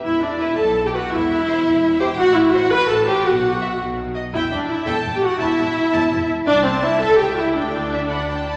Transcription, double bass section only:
X:1
M:6/8
L:1/8
Q:3/8=112
K:Em
V:1 name="Double bass section" clef=bass
E,,,3 B,,,3 | E,,,3 E,,,3 | A,,,3 A,,,3 | B,,,3 B,,,3 |
E,,, E,,, z E,,, E,,, z | E,,, E,,, z E,,, E,,, z | [K:Dmix] C,,3 ^C,,3 | D,,4- D,, z |]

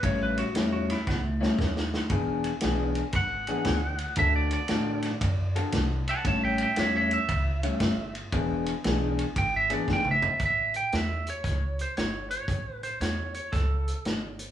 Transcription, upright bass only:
X:1
M:4/4
L:1/8
Q:"Swing" 1/4=116
K:Amix
V:1 name="Upright bass" clef=bass
A,,,2 E,,2 C,,2 ^D,,2 | E,,,2 B,,,2 ^G,,,2 D,,2 | D,,2 A,,2 F,,2 =C,,2 | A,,,2 E,,2 C,,2 G,,,2 |
E,,,2 B,,,2 ^G,,,2 G,,,2 | A,,,2 E,,2 C,,2 G,,,2 | A,,,2 E,,2 C,,2 G,,,2 |]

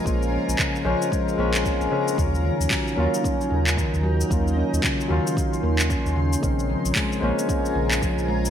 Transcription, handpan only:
X:1
M:4/4
L:1/16
Q:"Swing 16ths" 1/4=113
K:Ebdor
V:1 name="Handpan" clef=bass
B,2 D z D, z F, z A,2 B, z D z D, z | D,2 E,2 G, z B, z D2 D, z E, z G, z | B,2 D z D, z E, z G,2 B, z D z D, z | D,2 F,2 A, z B, z D2 D, z F, z A, z |]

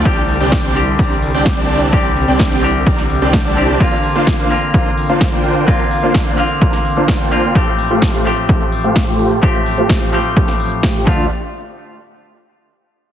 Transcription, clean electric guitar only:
X:1
M:4/4
L:1/8
Q:1/4=128
K:Bblyd
V:1 name="Clean electric guitar"
[D,G,CG]3 [D,G,CG]4- [D,G,CG] | [D,G,CG]3 [D,G,CG]4 [D,G,CG] | [D,B,CF]3 [D,B,CF]4- [D,B,CF] | [D,B,CF]3 [D,B,CF]4 [D,B,CF] |
[A,,F,A,CG]3 [A,,F,A,CG]4- [A,,F,A,CG] | [A,,F,A,CG]3 [A,,F,A,CG]4 [D,F,A,F] | z8 |]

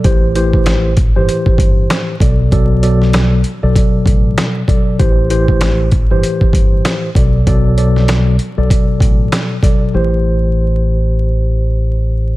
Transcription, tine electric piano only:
X:1
M:4/4
L:1/16
Q:"Swing 16ths" 1/4=97
K:Ador
V:1 name="Tine electric piano"
[A,,E,Gc]2 [A,,E,Gc]4 z [A,,E,Gc]6 z [B,,F,Ad]2 | [B,,F,Ad]2 [B,,F,Ad]4 z [B,,F,Ad]6 z [B,,F,Ad]2 | [A,,E,Gc]2 [A,,E,Gc]4 z [A,,E,Gc]6 z [B,,F,Ad]2 | [B,,F,Ad]2 [B,,F,Ad]4 z [B,,F,Ad]6 z [B,,F,Ad]2 |
[A,,E,Gc]16 |]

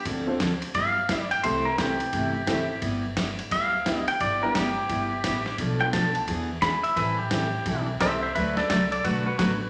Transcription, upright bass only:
X:1
M:4/4
L:1/8
Q:"Swing" 1/4=174
K:G
V:1 name="Upright bass" clef=bass
D,,4 G,,,4 | C,,4 G,,,4 | G,,,4 D,,4 | G,,,4 G,,,2 A,,,2 |
B,,,4 E,,4 | A,,,4 B,,,2 C,,2 | D,,2 C,,2 B,,,2 A,,,2 |]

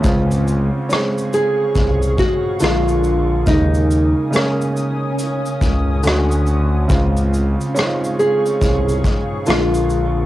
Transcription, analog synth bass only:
X:1
M:4/4
L:1/16
Q:"Swing 16ths" 1/4=70
K:Db
V:1 name="Analog synth bass" clef=bass
D,,3 z4 z C,,2 z2 B,,,4 | E,,3 z6 z D,,2 =D,,4 | D,,3 z4 z C,,2 z2 B,,,4 |]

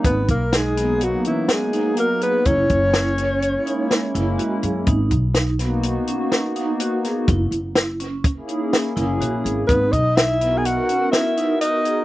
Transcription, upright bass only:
X:1
M:5/4
L:1/8
Q:1/4=125
K:G#m
V:1 name="Upright bass" clef=bass
G,,, B,,,4 z4 z | F,,, F,,,4 z2 F,,, z F,, | G,,, B,,,4 z4 z | F,,, F,,,4 z2 F,,, A,,, G,,, |
G,,, B,,,4 z4 z |]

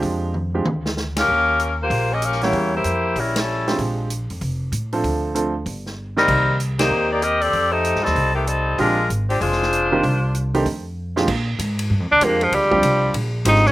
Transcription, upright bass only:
X:1
M:4/4
L:1/8
Q:"Swing" 1/4=192
K:Bbmix
V:1 name="Upright bass" clef=bass
F,,4 D,,4 | E,,4 B,,,4 | =E,,2 F,,2 B,,,4 | B,,,3 F,, F,,,2 =A,,2 |
D,,4 G,,,4 | C,,4 E,,4 | F,,2- (3F,, G,, E,, C,,4 | B,,,2 A,,,2 F,,,4 |
C,,4 F,,4 | B,,2 A,,2 (3G,, F,, D,, F,,2 | D,,2 C,,2 B,,,2 A,,,2 |]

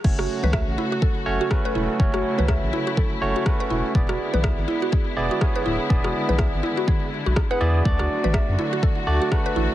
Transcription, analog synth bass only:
X:1
M:4/4
L:1/16
Q:"Swing 16ths" 1/4=123
K:A
V:1 name="Analog synth bass" clef=bass
F,,, F,,, z C,,2 A,,, z4 F,,, z3 E,,, z | F,,, F,,, z C,,2 A,,, z4 F,,, z3 E,,, z | E,,, E,,, z B,,,2 G,,, z4 E,,, z3 D,,, z | E,,, E,,, z B,,,2 G,,, z4 z B,,, z2 E,,2 |
D,, D,, z A,,,2 F,, z4 D,, z3 A,,, z |]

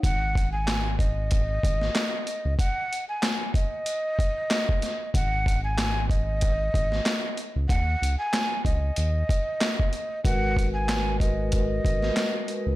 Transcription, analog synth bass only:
X:1
M:4/4
L:1/16
Q:"Swing 16ths" 1/4=94
K:G#m
V:1 name="Analog synth bass" clef=bass
G,,,8- G,,,2 G,,,2 z3 C,, | z16 | G,,,8- G,,,2 G,,,2 z3 C,, | D,,2 C,, z3 C,,2 D,,2 z6 |
G,,,8- G,,,2 G,,,2 z3 C,, |]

